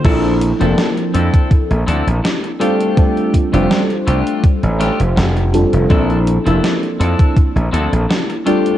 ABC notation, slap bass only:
X:1
M:4/4
L:1/16
Q:1/4=82
K:Bblyd
V:1 name="Slap bass" clef=bass
B,,,3 F,,, z2 F,, z2 B,,, D,, B,,, z4 | z3 F,,, z2 C,, z2 A,,, z F,,, F,,,3 F,,, | B,,,3 F,,, z2 F,, z2 B,,, D,, B,,, z4 |]